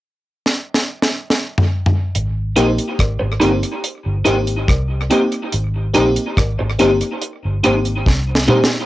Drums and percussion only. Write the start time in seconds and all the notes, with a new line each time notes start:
0.46 snare
0.74 snare
1.02 snare
1.30 snare
1.58 floor tom
1.86 floor tom
2.15 closed hi-hat
2.56 closed hi-hat
2.78 closed hi-hat
2.99 kick, cross-stick, closed hi-hat
3.41 closed hi-hat
3.63 closed hi-hat
3.84 closed hi-hat
4.25 closed hi-hat
4.47 closed hi-hat
4.68 kick, cross-stick, closed hi-hat
5.11 closed hi-hat
5.32 closed hi-hat
5.52 closed hi-hat
5.95 closed hi-hat
6.16 closed hi-hat
6.37 kick, cross-stick, closed hi-hat
6.79 closed hi-hat
7.01 closed hi-hat
7.22 closed hi-hat
7.64 closed hi-hat
7.85 closed hi-hat
8.06 kick, snare
8.35 snare
8.48 mid tom
8.64 snare